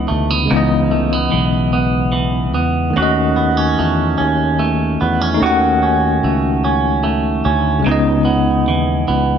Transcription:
0.00 0.44 C#3 medium
0.00 0.49 C#3 medium
0.00 1.30 E3 medium
0.00 0.45 G#3 medium
0.00 0.47 B3 medium
0.00 0.50 D#4 medium
0.00 0.52 D#4 medium
0.00 0.50 D#5 medium
0.08 0.47 D2 medium
0.08 0.31 A3 medium
0.31 0.91 B3 soft
0.45 2.88 C#3 medium
0.45 2.90 G#3 medium
0.51 1.29 C#2 medium
0.51 2.95 C#3 medium
0.51 2.93 E3 medium
0.51 2.91 B3 medium
0.51 3.36 D#4 medium
0.57 2.94 D#5 medium
0.91 1.13 A3 medium
1.13 1.72 B3 soft
1.31 2.57 B1 medium
1.31 2.11 E3 soft
1.73 2.53 B3 medium
2.12 2.95 E3 medium
2.54 2.92 E2 medium
2.54 3.03 B3 medium
2.90 5.34 D#3 medium
2.90 5.35 A3 medium
2.96 3.74 D#2 medium
2.96 5.43 D#3 medium
2.96 5.37 C#4 medium
2.96 5.41 F#4 medium
2.96 5.38 F#4 medium
3.02 5.40 D#5 medium
3.36 3.57 B3 medium
3.57 4.17 C#4 soft
3.79 4.15 E2 medium
3.79 4.58 A3 soft
4.18 4.97 D#2 medium
4.18 5.00 C#4 medium
4.59 6.22 A3 medium
5.01 5.37 E2 medium
5.01 5.21 B3 soft
5.21 5.82 C#4 soft
5.34 7.79 A3 medium
5.34 7.78 D#4 medium
5.40 6.19 D#2 loud
5.40 7.89 D#3 medium
5.40 7.81 C#4 medium
5.40 7.86 F#4 medium
5.40 7.83 F#4 medium
5.46 7.84 F#5 medium
5.83 6.64 C#4 medium
6.24 7.41 C#2 medium
6.24 7.02 A3 soft
6.64 7.45 C#4 medium
7.04 7.93 A3 medium
7.45 7.82 D2 medium
7.45 7.87 C#4 medium
7.79 9.38 C#3 medium
7.79 9.38 G#3 medium
7.86 8.69 C#2 medium
7.86 9.38 C#3 medium
7.86 9.38 B3 medium
7.86 9.38 D#4 medium
7.92 9.38 D#5 medium
8.25 9.07 B3 soft
8.68 9.05 D#2 medium
8.68 9.38 E3 soft
9.08 9.38 C#2 medium
9.08 9.38 B3 medium

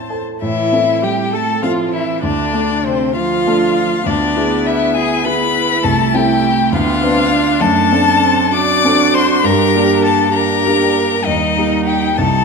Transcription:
0.00 0.39 A2 soft
0.00 0.45 C4 soft
0.00 0.45 E4 soft
0.00 0.21 C5 soft
0.00 0.45 C5 soft
0.00 0.30 E5 soft
0.00 0.18 A5 soft
0.10 0.42 A4 soft
0.42 0.72 A2 soft
0.42 1.04 E3 medium
0.42 1.03 E4 medium
0.42 1.05 E4 soft
0.42 1.05 E5 medium
0.72 1.59 C4 soft
0.72 1.59 E4 soft
0.72 1.60 A4 soft
1.02 1.35 G3 soft
1.02 1.34 G4 soft
1.02 1.32 G4 soft
1.02 1.36 G5 medium
1.33 1.62 A3 soft
1.33 1.64 A4 soft
1.33 1.65 A4 soft
1.33 1.62 A5 soft
1.62 1.94 F3 medium
1.62 2.19 C4 soft
1.62 2.20 E4 soft
1.62 1.92 F4 soft
1.62 1.95 F4 medium
1.62 2.20 A4 soft
1.62 1.71 F5 medium
1.93 2.26 E3 soft
1.93 2.22 E4 soft
1.93 2.23 E5 soft
2.22 2.53 D2 soft
2.22 2.85 D3 medium
2.22 2.87 D4 medium
2.22 2.84 D4 medium
2.22 2.88 D5 medium
2.53 3.43 A3 soft
2.53 3.43 D4 soft
2.53 3.43 A4 soft
2.85 3.19 C3 soft
2.85 3.15 C4 soft
2.85 3.15 C4 medium
2.85 3.16 C5 medium
3.15 4.08 F3 medium
3.15 4.05 F4 medium
3.15 4.08 F5 medium
3.47 4.03 A3 soft
3.47 4.03 D4 soft
3.47 4.03 A4 soft
4.06 4.36 D2 soft
4.06 5.81 B3 soft
4.06 4.64 D4 medium
4.06 4.98 D4 soft
4.06 4.68 D5 medium
4.36 5.21 B3 soft
4.36 5.22 E4 soft
4.36 5.22 G#4 soft
4.65 4.95 E4 medium
4.65 4.96 E5 medium
4.95 6.74 E4 medium
4.95 5.24 G#4 medium
4.95 5.27 G#5 medium
5.25 5.80 B3 soft
5.25 5.81 E4 soft
5.25 5.81 G#4 soft
5.25 5.84 B4 medium
5.25 5.86 B5 medium
5.83 6.13 C2 medium
5.83 6.75 A3 soft
5.83 6.12 A4 medium
5.83 6.16 A5 medium
6.13 6.69 C4 soft
6.13 6.69 E4 soft
6.13 6.71 G4 medium
6.13 6.70 A4 soft
6.13 6.74 G5 medium
6.72 7.01 D2 medium
6.72 7.05 B3 medium
6.72 8.53 D4 medium
6.72 7.62 F4 medium
6.72 7.63 F5 medium
7.02 7.57 B3 soft
7.02 7.34 C4 medium
7.02 7.57 D4 soft
7.02 7.58 B4 soft
7.32 7.63 D4 medium
7.60 7.90 F#2 medium
7.60 7.94 A3 medium
7.60 8.55 A4 medium
7.60 8.54 A5 medium
7.91 8.24 A#3 medium
7.91 8.80 C4 soft
7.91 8.80 D4 soft
7.91 8.80 A4 soft
8.23 8.54 C4 medium
8.53 10.32 D4 medium
8.53 9.46 F#4 medium
8.53 9.15 D5 medium
8.53 9.17 D6 medium
8.84 9.41 C4 soft
8.84 9.41 D4 soft
8.84 9.41 A4 soft
9.14 9.43 C5 medium
9.14 9.46 C6 medium
9.43 9.73 G2 medium
9.43 10.34 G4 medium
9.43 10.05 A#4 medium
9.43 10.04 A#5 medium
9.74 10.62 A#3 soft
9.74 10.62 D4 soft
9.74 10.62 G4 soft
10.04 10.36 A4 medium
10.04 10.34 A5 medium
10.34 11.25 D4 soft
10.34 11.24 G4 medium
10.34 11.26 A#4 medium
10.34 11.27 A#5 medium
10.65 11.22 A#3 soft
10.65 11.23 D4 soft
10.65 11.23 G4 soft
11.25 11.56 D#2 soft
11.25 12.14 G3 soft
11.25 12.14 D#4 medium
11.25 11.86 D#4 medium
11.25 11.85 D#5 medium
11.57 12.14 A#3 soft
11.57 12.15 D#4 soft
11.57 12.15 G4 soft
11.86 12.17 G4 medium
11.86 12.19 G5 medium
12.17 12.44 C2 soft
12.17 12.44 G3 soft
12.17 12.44 D#4 medium
12.17 12.44 A4 medium
12.17 12.44 A5 medium

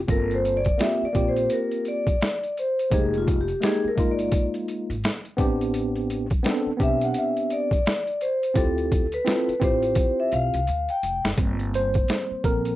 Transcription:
0.08 0.69 G1 medium
0.08 0.58 A#3 medium
0.08 0.58 C4 medium
0.08 0.59 F4 medium
0.08 0.60 A4 medium
0.08 0.34 A#4 medium
0.08 kick loud
0.08 closed hi-hat medium
0.31 0.58 C5 medium
0.31 closed hi-hat soft
0.45 closed hi-hat medium
0.57 0.81 D5 loud
0.65 kick medium
0.65 closed hi-hat soft
0.78 1.05 A#3 medium
0.78 1.05 C4 medium
0.78 1.06 F4 medium
0.78 1.06 G4 medium
0.78 1.03 E5 medium
0.78 snare loud
0.78 closed hi-hat medium
1.02 1.28 D5 loud
1.02 muted upright bass stroke soft
1.13 1.45 A#1 medium
1.13 2.10 A#3 medium
1.13 2.11 C4 medium
1.13 2.12 F4 medium
1.13 2.12 G4 medium
1.13 kick medium
1.13 closed hi-hat medium
1.28 1.50 C5 loud
1.36 closed hi-hat medium
1.50 1.84 A#4 medium
1.50 closed hi-hat loud
1.71 closed hi-hat soft
1.85 2.53 D5 loud
1.85 closed hi-hat medium
2.07 kick medium
2.07 closed hi-hat medium
2.21 snare loud
2.21 closed hi-hat medium
2.43 closed hi-hat soft
2.57 2.94 C5 medium
2.57 closed hi-hat medium
2.79 closed hi-hat medium
2.90 3.51 F1 loud
2.90 3.40 G#3 medium
2.90 3.41 A#3 medium
2.90 3.41 D#4 medium
2.90 3.42 G4 medium
2.90 3.17 G#4 medium
2.90 kick loud
2.90 closed hi-hat medium
3.14 3.38 F4 medium
3.14 closed hi-hat soft
3.28 kick medium
3.28 closed hi-hat medium
3.41 3.64 G4 medium
3.48 closed hi-hat medium
3.60 3.87 G#3 medium
3.60 3.88 A#3 medium
3.60 3.88 D#4 medium
3.60 3.89 G4 medium
3.60 3.87 G#4 medium
3.60 snare loud
3.60 closed hi-hat medium
3.85 4.11 A#4 medium
3.85 muted upright bass stroke soft
3.96 4.27 G1 medium
3.96 4.93 G#3 medium
3.96 4.94 A#3 medium
3.96 4.94 D#4 medium
3.96 4.95 F4 medium
3.96 kick medium
3.96 closed hi-hat medium
4.11 4.43 D5 medium
4.19 closed hi-hat medium
4.32 kick loud
4.32 closed hi-hat loud
4.54 closed hi-hat soft
4.68 closed hi-hat medium
4.90 5.01 G#1 medium
4.90 closed hi-hat medium
5.04 snare loud
5.04 closed hi-hat medium
5.25 closed hi-hat soft
5.37 6.28 A1 medium
5.37 6.25 B3 medium
5.37 6.26 C4 medium
5.37 6.26 D4 medium
5.37 6.27 G4 loud
5.37 kick loud
5.37 closed hi-hat medium
5.61 closed hi-hat medium
5.74 closed hi-hat medium
5.96 closed hi-hat soft
6.10 closed hi-hat medium
6.30 kick medium
6.30 closed hi-hat medium
6.43 6.69 B3 medium
6.43 6.70 C4 medium
6.43 6.71 D4 medium
6.43 6.71 A4 loud
6.43 snare loud
6.43 closed hi-hat medium
6.66 muted upright bass stroke soft
6.77 7.10 B1 medium
6.77 7.75 B3 medium
6.77 7.76 C4 medium
6.77 7.76 D4 medium
6.77 kick medium
6.81 7.77 G4 medium
6.81 7.03 E5 medium
6.81 closed hi-hat medium
7.01 7.17 F#5 medium
7.01 closed hi-hat medium
7.14 7.53 E5 medium
7.14 closed hi-hat loud
7.37 closed hi-hat soft
7.50 8.24 D5 medium
7.50 closed hi-hat medium
7.71 kick medium
7.71 closed hi-hat medium
7.86 snare loud
7.86 closed hi-hat medium
8.07 closed hi-hat soft
8.21 8.58 C5 medium
8.21 closed hi-hat medium
8.43 closed hi-hat medium
8.54 9.16 D2 medium
8.54 9.04 C4 medium
8.54 9.05 E4 medium
8.54 9.06 F4 medium
8.54 9.06 G4 medium
8.54 9.15 A4 medium
8.54 kick loud
8.54 closed hi-hat medium
8.78 closed hi-hat soft
8.92 kick medium
8.92 closed hi-hat medium
9.12 9.64 B4 medium
9.12 closed hi-hat medium
9.25 9.52 C4 medium
9.25 9.52 E4 medium
9.25 9.53 F4 medium
9.25 9.53 A4 medium
9.25 snare loud
9.25 closed hi-hat medium
9.48 muted upright bass stroke soft
9.48 closed hi-hat soft
9.60 9.92 A1 medium
9.60 10.57 C4 medium
9.60 10.58 E4 medium
9.60 10.58 F4 medium
9.60 10.59 G4 medium
9.60 kick loud
9.60 closed hi-hat medium
9.64 10.21 C5 loud
9.82 closed hi-hat medium
9.95 kick loud
9.95 closed hi-hat loud
10.20 10.32 E5 medium
10.32 10.51 B1 medium
10.32 10.91 F5 loud
10.32 closed hi-hat medium
10.54 10.66 C2 medium
10.54 closed hi-hat medium
10.67 10.86 D2 loud
10.67 closed hi-hat medium
10.89 11.23 G5 medium
10.89 closed hi-hat soft
11.03 11.21 F1 medium
11.03 closed hi-hat medium
11.24 11.36 F#1 medium
11.24 snare loud
11.24 closed hi-hat medium
11.37 11.98 G1 medium
11.37 12.76 G3 medium
11.37 12.44 A#3 soft
11.37 12.43 C4 medium
11.37 kick loud
11.37 closed hi-hat medium
11.59 closed hi-hat soft
11.74 12.47 C5 loud
11.74 closed hi-hat medium
11.94 kick medium
11.94 closed hi-hat medium
12.08 snare loud
12.08 closed hi-hat medium
12.31 muted upright bass stroke soft
12.44 12.74 A#1 medium
12.44 12.76 F3 medium
12.44 12.76 A#3 soft
12.44 12.76 C4 medium
12.44 12.76 A4 soft
12.44 12.76 A#4 medium
12.44 kick medium
12.44 closed hi-hat medium
12.65 closed hi-hat medium

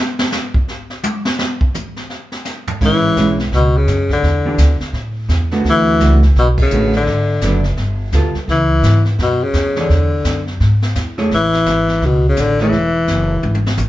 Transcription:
0.19 snare loud
0.32 snare loud
0.32 hi-hat pedal medium
0.54 kick medium
0.68 snare soft
0.90 snare soft
1.03 hi-hat pedal medium
1.03 high tom loud
1.25 snare medium
1.39 snare medium
1.61 kick medium
1.74 hi-hat pedal medium
1.74 mid tom medium
1.96 snare soft
2.10 snare soft
2.32 snare medium
2.45 snare medium
2.45 hi-hat pedal medium
2.67 floor tom loud
2.81 3.15 A1 medium
2.81 3.15 G#3 medium
2.81 3.16 C#4 medium
2.81 3.16 E4 medium
2.81 brush sweep soft
2.81 kick medium
2.81 snare soft
2.81 crash medium
2.85 3.37 E3 loud
3.16 3.51 B1 medium
3.16 3.37 G#3 medium
3.16 3.37 C#4 medium
3.16 3.38 E4 medium
3.16 kick soft
3.16 snare medium
3.16 hi-hat pedal medium
3.39 snare soft
3.52 3.86 C#2 medium
3.52 3.79 B2 medium
3.52 brush sweep soft
3.52 kick soft
3.52 snare soft
3.77 4.11 C#3 medium
3.87 4.22 F#2 medium
3.87 kick soft
3.87 snare medium
3.87 hi-hat pedal medium
4.09 4.78 D3 medium
4.09 kick soft
4.09 snare soft
4.23 4.57 E2 medium
4.23 brush sweep soft
4.23 kick soft
4.23 snare soft
4.45 4.58 E3 medium
4.45 4.58 B3 medium
4.45 4.58 D4 medium
4.45 4.58 G4 medium
4.58 4.79 D2 medium
4.58 kick soft
4.58 snare medium
4.58 hi-hat pedal medium
4.80 muted upright bass stroke soft
4.80 snare soft
4.93 5.28 A2 medium
4.93 brush sweep soft
4.93 kick soft
4.93 snare soft
5.28 5.64 E2 medium
5.28 kick soft
5.28 snare medium
5.28 hi-hat pedal medium
5.51 5.98 D3 medium
5.51 5.98 A3 medium
5.51 5.98 B3 medium
5.51 5.99 F#4 medium
5.51 snare soft
5.64 5.99 D2 medium
5.64 brush sweep soft
5.64 kick soft
5.64 snare soft
5.69 6.21 E3 loud
6.00 6.35 C#2 medium
6.00 6.21 D3 medium
6.00 6.21 A3 medium
6.00 6.21 B3 medium
6.00 6.21 F#4 medium
6.00 kick soft
6.00 snare medium
6.00 hi-hat pedal medium
6.22 snare soft
6.36 6.70 B1 medium
6.36 6.48 B2 medium
6.36 brush sweep soft
6.36 kick soft
6.36 snare soft
6.58 kick medium
6.58 ride medium
6.62 6.93 C#3 medium
6.71 7.06 A1 medium
6.71 6.92 D3 medium
6.71 6.92 A3 medium
6.71 6.92 B3 medium
6.71 6.92 F#4 medium
6.71 hi-hat pedal medium
6.93 7.62 D3 medium
6.93 snare soft
7.06 7.41 G#1 medium
7.06 brush sweep soft
7.06 kick soft
7.06 snare soft
7.41 7.76 F#1 medium
7.41 7.63 F#3 medium
7.41 7.63 B3 medium
7.41 7.64 D4 medium
7.41 kick soft
7.41 snare medium
7.41 hi-hat pedal soft
7.64 snare soft
7.77 8.12 G1 medium
7.77 brush sweep soft
7.77 kick soft
7.77 snare soft
8.12 8.33 D2 medium
8.12 8.33 G3 medium
8.12 8.34 B3 medium
8.12 8.34 F4 medium
8.12 8.34 A4 medium
8.12 kick soft
8.12 snare medium
8.12 hi-hat pedal medium
8.35 muted upright bass stroke soft
8.35 snare soft
8.48 8.82 C#2 medium
8.48 9.03 E3 medium
8.48 brush sweep soft
8.48 kick soft
8.48 snare soft
8.83 9.18 G#2 medium
8.83 kick soft
8.83 snare medium
8.83 hi-hat pedal medium
9.05 snare soft
9.18 9.53 F#2 medium
9.18 9.45 B2 medium
9.18 brush sweep soft
9.18 kick soft
9.18 snare soft
9.44 9.78 C#3 medium
9.53 9.88 F2 medium
9.53 kick soft
9.53 snare medium
9.53 hi-hat pedal soft
9.76 10.45 D3 medium
9.76 9.89 E3 medium
9.76 9.89 D4 medium
9.76 9.89 G#4 medium
9.76 9.89 C#5 medium
9.76 snare soft
9.89 10.24 E2 medium
9.89 brush sweep soft
9.89 kick soft
9.89 snare soft
10.24 10.59 F#2 medium
10.24 kick soft
10.24 snare medium
10.24 hi-hat pedal medium
10.47 snare soft
10.60 10.95 G#2 medium
10.60 brush sweep soft
10.60 kick soft
10.60 snare soft
10.82 snare medium
10.95 11.30 E2 medium
10.95 kick soft
10.95 snare medium
10.95 hi-hat pedal medium
11.18 11.30 A3 medium
11.18 11.30 E4 medium
11.18 11.30 G#4 medium
11.18 11.30 C#5 medium
11.18 snare soft
11.31 11.65 A1 medium
11.31 12.07 E3 loud
11.31 brush sweep soft
11.31 kick soft
11.31 snare soft
11.53 snare soft
11.66 12.01 G#1 medium
11.66 kick soft
11.66 snare medium
11.66 hi-hat pedal medium
11.88 snare soft
12.01 12.36 C#2 medium
12.01 brush sweep soft
12.01 kick soft
12.01 snare soft
12.05 12.26 B2 medium
12.29 12.42 C#3 medium
12.36 12.71 A1 medium
12.36 12.60 D3 loud
12.36 kick soft
12.36 snare medium
12.36 hi-hat pedal medium
12.59 13.76 E3 medium
12.59 12.72 A3 medium
12.59 12.72 E4 medium
12.59 12.72 G#4 medium
12.59 12.73 C#5 medium
12.59 snare soft
12.72 13.07 E1 medium
12.72 brush sweep soft
12.72 kick soft
12.72 snare soft
13.07 13.42 F#1 medium
13.07 kick soft
13.07 snare medium
13.07 hi-hat pedal soft
13.43 13.77 G#1 medium
13.43 high tom soft
13.55 high tom soft
13.66 snare medium
13.77 13.89 A1 medium
13.77 hi-hat pedal medium
13.77 mid tom medium

